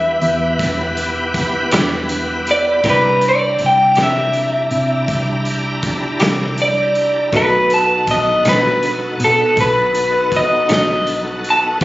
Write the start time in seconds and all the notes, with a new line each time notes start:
Already playing: E2 B3 E4 G4 B4 E5
0.22 E2, closed hi-hat
0.59 E1, kick, snare, closed hi-hat
0.97 closed hi-hat
1.34 kick, closed hi-hat
1.71 E1 E3 B3 E4 G4, snare, closed hi-hat
2.09 closed hi-hat
2.47 closed hi-hat
2.51 D5
2.84 C2 C3 A#3 D4 E4 G4 D5 A#5, kick, closed hi-hat
2.90 B4
3.21 closed hi-hat
3.29 D5
3.59 C2, closed hi-hat
3.66 G5
3.95 C3 A#3 E4 G4, snare, closed hi-hat
4.03 E5
4.33 closed hi-hat
4.71 C3, closed hi-hat
5.08 C2, kick, closed hi-hat
5.45 closed hi-hat
5.83 kick, closed hi-hat
6.20 C2 C3 A#3 E4 G4, snare, closed hi-hat
6.58 closed hi-hat
6.62 D5
6.95 closed hi-hat
7.33 B1 B2 F#3 A3 B3 D#4 F#4 A4 B4 D#5, kick, closed hi-hat
7.70 A5, closed hi-hat
8.07 B1 D#5, kick, closed hi-hat
8.45 B2 F#3 A3 D#4 B4, snare, closed hi-hat
8.83 closed hi-hat
9.20 B2, closed hi-hat
9.24 A4
9.57 B1 B4, kick, closed hi-hat
9.95 closed hi-hat
10.32 kick, closed hi-hat
10.36 D#5
10.69 B1 B2 F#3 A3 D#4, snare, closed hi-hat
10.74 D#5
11.07 closed hi-hat
11.44 closed hi-hat
11.50 A5
11.81 E2, kick, closed hi-hat